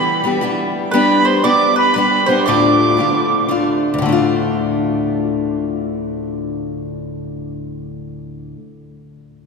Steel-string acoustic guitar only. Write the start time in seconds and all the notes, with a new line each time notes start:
Already playing: E3 G3 B3 G4
0.24 E3 G3 B3 G4
0.41 E3 G3 B3 G4
0.93 G3 B3 D4 G4
1.44 G3 B3 D4 G4
1.96 G3 B3 D4 G4
2.28 G3 B3 D4 G4
2.46 D2 A2 D3 A3 D4 F4
2.97 D3 A3 D4 F4
3.49 D3 A3 D4 F4
3.94 D2
3.98 A2 D3
4.06 A3 D4
4.12 F4